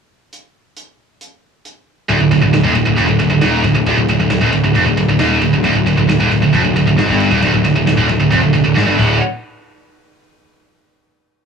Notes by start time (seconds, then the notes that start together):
0.33 closed hi-hat
0.77 closed hi-hat
1.21 closed hi-hat
1.65 closed hi-hat
2.09 D1 D2, kick, ride
2.20 D1 D2, kick
2.31 D1 D2, kick, ride
2.42 D1 D2, kick
2.53 D1 D2, snare, ride
2.64 D#1 D#2, kick
2.75 D1 D2, kick, ride
2.87 D1 D2, kick
2.97 F1 F2, kick, ride
3.08 D1 D2, kick
3.20 D1 D2, kick, ride
3.30 D1 D2, kick
3.41 D#1 D#2, snare, ride
3.63 D1 D2, kick, ride
3.74 D1 D2, kick
3.86 D1 D2, kick, ride
3.97 D1 D2, kick
4.09 D1 D2, kick, ride
4.19 D1 D2, kick
4.30 D1 D2, snare, ride
4.42 D#1 D#2, kick
4.52 D1 D2, kick, ride
4.64 D1 D2, kick
4.74 F1 F2, kick, ride
4.86 D1 D2, kick
4.97 D1 D2, kick, ride
5.08 D1 D2, kick
5.19 D#1 D#2, snare, ride
5.42 D1 D2, kick, ride
5.53 D1 D2, kick
5.63 D1 D2, kick, ride
5.75 D1 D2, kick
5.86 D1 D2, kick, ride
5.97 D1 D2, kick
6.08 D1 D2, snare, ride
6.19 D#1 D#2, kick
6.30 D1 D2, kick, ride
6.41 D1 D2, kick
6.53 F1 F2, kick, ride
6.63 D1 D2, kick
6.74 D1 D2, kick, ride
6.86 D1 D2, kick
6.97 G#1 G#2, snare, ride
7.08 G1 G2, kick
7.20 ride
7.31 D#1 D#2, kick
7.42 D1 D2, kick, ride
7.52 D1 D2, kick
7.64 D1 D2, kick, ride
7.75 D1 D2, kick
7.86 D1 D2, snare, ride
7.97 D#1 D#2, kick
8.09 D1 D2, kick, ride
8.20 D1 D2, kick
8.32 F1 F2, kick, ride
8.43 D1 D2, kick
8.54 D1 D2, kick, ride
8.65 D1 D2
8.75 G#1 G#2, snare
8.86 G1 G2
8.96 D1 D2 A2 D3, kick, crash